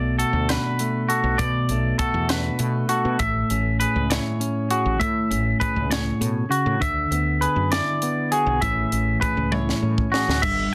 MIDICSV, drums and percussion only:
0, 0, Header, 1, 2, 480
1, 0, Start_track
1, 0, Key_signature, 3, "major"
1, 0, Tempo, 603015
1, 1104, Time_signature, 6, 3, 24, 8
1, 8551, End_track
2, 0, Start_track
2, 0, Title_t, "Drums"
2, 155, Note_on_c, 9, 42, 61
2, 235, Note_off_c, 9, 42, 0
2, 390, Note_on_c, 9, 42, 83
2, 398, Note_on_c, 9, 38, 104
2, 470, Note_off_c, 9, 42, 0
2, 478, Note_off_c, 9, 38, 0
2, 630, Note_on_c, 9, 42, 56
2, 709, Note_off_c, 9, 42, 0
2, 874, Note_on_c, 9, 42, 58
2, 953, Note_off_c, 9, 42, 0
2, 1107, Note_on_c, 9, 42, 77
2, 1108, Note_on_c, 9, 36, 97
2, 1186, Note_off_c, 9, 42, 0
2, 1188, Note_off_c, 9, 36, 0
2, 1344, Note_on_c, 9, 42, 53
2, 1424, Note_off_c, 9, 42, 0
2, 1583, Note_on_c, 9, 42, 62
2, 1586, Note_on_c, 9, 36, 83
2, 1663, Note_off_c, 9, 42, 0
2, 1666, Note_off_c, 9, 36, 0
2, 1824, Note_on_c, 9, 42, 84
2, 1832, Note_on_c, 9, 38, 102
2, 1903, Note_off_c, 9, 42, 0
2, 1911, Note_off_c, 9, 38, 0
2, 2060, Note_on_c, 9, 42, 58
2, 2140, Note_off_c, 9, 42, 0
2, 2300, Note_on_c, 9, 42, 61
2, 2380, Note_off_c, 9, 42, 0
2, 2541, Note_on_c, 9, 42, 75
2, 2545, Note_on_c, 9, 36, 91
2, 2620, Note_off_c, 9, 42, 0
2, 2625, Note_off_c, 9, 36, 0
2, 2786, Note_on_c, 9, 42, 57
2, 2866, Note_off_c, 9, 42, 0
2, 3029, Note_on_c, 9, 42, 68
2, 3109, Note_off_c, 9, 42, 0
2, 3268, Note_on_c, 9, 42, 89
2, 3276, Note_on_c, 9, 38, 104
2, 3348, Note_off_c, 9, 42, 0
2, 3356, Note_off_c, 9, 38, 0
2, 3511, Note_on_c, 9, 42, 52
2, 3590, Note_off_c, 9, 42, 0
2, 3745, Note_on_c, 9, 42, 59
2, 3825, Note_off_c, 9, 42, 0
2, 3987, Note_on_c, 9, 42, 75
2, 3988, Note_on_c, 9, 36, 103
2, 4067, Note_off_c, 9, 42, 0
2, 4068, Note_off_c, 9, 36, 0
2, 4230, Note_on_c, 9, 42, 53
2, 4309, Note_off_c, 9, 42, 0
2, 4468, Note_on_c, 9, 36, 84
2, 4470, Note_on_c, 9, 42, 57
2, 4548, Note_off_c, 9, 36, 0
2, 4549, Note_off_c, 9, 42, 0
2, 4708, Note_on_c, 9, 42, 84
2, 4716, Note_on_c, 9, 38, 117
2, 4787, Note_off_c, 9, 42, 0
2, 4795, Note_off_c, 9, 38, 0
2, 4948, Note_on_c, 9, 42, 60
2, 5028, Note_off_c, 9, 42, 0
2, 5188, Note_on_c, 9, 42, 54
2, 5268, Note_off_c, 9, 42, 0
2, 5427, Note_on_c, 9, 36, 107
2, 5430, Note_on_c, 9, 42, 76
2, 5506, Note_off_c, 9, 36, 0
2, 5509, Note_off_c, 9, 42, 0
2, 5666, Note_on_c, 9, 42, 56
2, 5746, Note_off_c, 9, 42, 0
2, 5906, Note_on_c, 9, 42, 69
2, 5986, Note_off_c, 9, 42, 0
2, 6142, Note_on_c, 9, 42, 89
2, 6150, Note_on_c, 9, 38, 105
2, 6222, Note_off_c, 9, 42, 0
2, 6230, Note_off_c, 9, 38, 0
2, 6383, Note_on_c, 9, 42, 58
2, 6462, Note_off_c, 9, 42, 0
2, 6622, Note_on_c, 9, 42, 59
2, 6701, Note_off_c, 9, 42, 0
2, 6861, Note_on_c, 9, 42, 81
2, 6863, Note_on_c, 9, 36, 96
2, 6940, Note_off_c, 9, 42, 0
2, 6943, Note_off_c, 9, 36, 0
2, 7102, Note_on_c, 9, 42, 59
2, 7182, Note_off_c, 9, 42, 0
2, 7341, Note_on_c, 9, 36, 83
2, 7342, Note_on_c, 9, 42, 57
2, 7421, Note_off_c, 9, 36, 0
2, 7422, Note_off_c, 9, 42, 0
2, 7578, Note_on_c, 9, 48, 62
2, 7658, Note_off_c, 9, 48, 0
2, 7713, Note_on_c, 9, 38, 46
2, 7793, Note_off_c, 9, 38, 0
2, 7944, Note_on_c, 9, 36, 56
2, 8024, Note_off_c, 9, 36, 0
2, 8071, Note_on_c, 9, 38, 79
2, 8151, Note_off_c, 9, 38, 0
2, 8195, Note_on_c, 9, 38, 69
2, 8274, Note_off_c, 9, 38, 0
2, 8303, Note_on_c, 9, 36, 118
2, 8303, Note_on_c, 9, 49, 108
2, 8382, Note_off_c, 9, 49, 0
2, 8383, Note_off_c, 9, 36, 0
2, 8551, End_track
0, 0, End_of_file